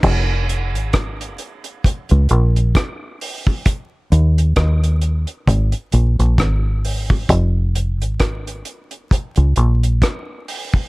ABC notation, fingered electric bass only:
X:1
M:4/4
L:1/16
Q:"Swing 16ths" 1/4=66
K:Fm
V:1 name="Fingered electric bass" clef=bass
F,,,3 A,,,3 z3 D,, B,,,2 z4 | z2 E,,2 E,,3 z A,,, z B,,, B,,, A,,,4 | F,,,3 A,,,3 z3 D,, B,,,2 z4 |]